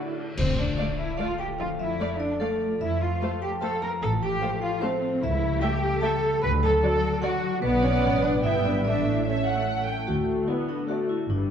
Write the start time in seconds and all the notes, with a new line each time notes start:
Already playing: D3 A3 D4 E4 F#4 D5 F#5
0.17 D4 F#4
0.38 D2 D3 C4 C5, concert bass drum, crash
0.48 D4
0.58 A3 D4 D5
0.68 F4
0.78 A3 D5 F5
0.88 A4
0.98 E4 E5 F5
1.09 D6
1.17 A3 F4 D5 F5
1.29 A4
1.38 F4 G4 G5
1.49 A3
1.59 F2 F3 F4 F5
1.70 A3
1.79 E4 F4 E5
1.90 D5
2.00 A3 A4 D5 F5
2.10 F5
2.20 D4 D5 D6
2.31 A5
2.40 A3 A4 D5 F5 D6
2.51 F5
2.61 D5
2.71 F4
2.81 F2 F3 E4 E5
2.91 A3
3.01 F4 F5
3.11 C5
3.21 A3 A4 C5 F5
3.32 F5
3.42 G4 G5 C6
3.51 A5
3.62 A3 A4 C5 F5 A5 C6
3.72 F5
3.81 A#4 C5 A#5
3.92 F4
4.02 A1 A2 A4 A5
4.12 F3
4.22 A3 G4 G5
4.31 F4
4.42 A3 C5 F5
4.51 A4
4.62 F4 F5
4.72 C6
4.82 A3 C4 C5 F5
4.91 A4
5.02 F4
5.12 A3
5.22 C#2 C#3 E4 E5
5.33 G3
5.43 A3
5.53 G4
5.61 A3 G4 E5 G5
5.72 A4
5.83 G5
5.93 E6
6.01 A3 A4 E5 G5 A5
6.13 A4
6.23 G4
6.33 A3
6.42 D2 D3 B4 B5
6.53 D4
6.62 F#3 A4 A5
6.73 F#4
6.82 F#3 D5 F#5
6.92 F#4
7.02 F#5
7.12 D6
7.22 F#3 F#4 D5 F#5
7.33 F#4
7.43 F#3
7.53 D4
7.62 B1 B2 B3 B4 D5 F#5
7.72 F#3
7.83 B3 C#4 C#5
7.92 F#4
8.03 A1 D5
8.13 B4
8.22 D4 D5 F#5
8.33 D6
8.43 G1 G2 B3 E4 E5 G5
8.54 G3
8.63 B3 D4 D5
8.74 E4
8.84 A1 A2 A3 D4 D5 E5
8.95 E3
9.05 A3
9.16 E4
9.25 A3 C#4 C#5 E5
9.36 A4
9.46 E5 F#5
9.57 E6
9.67 E5
9.77 A4
9.88 E4 G5
9.98 A3
10.07 D2 D3 A3 F#4
10.28 D4
10.48 A3 B3 E4 D5 F#5
10.69 D4 F#4
10.89 A3 F#4 D5 F#5
11.09 E4 F#4
11.30 G1 G2 G3 D4